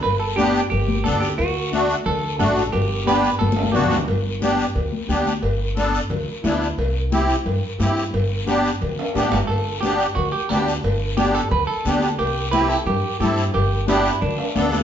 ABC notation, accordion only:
X:1
M:4/4
L:1/8
Q:1/4=178
K:G
V:1 name="Accordion"
z2 [B,DG] z3 [B,DA] z | z2 [A,DF] z3 [A,DF] z | z2 [B,DG] z3 [B,DF] z | z2 [B,DG] z3 [B,DG] z |
z2 [B,DA] z3 [B,DE] z | z2 [CEG] z3 [CEG] z | z2 [B,DG] z3 [B,DG] z | z2 [B,DG] z3 [B,DG] z |
z2 [B,DG] z3 [B,DG] z | z2 [CEG] z3 [CEA] z | z2 [B,DG] z3 [B,DA] z |]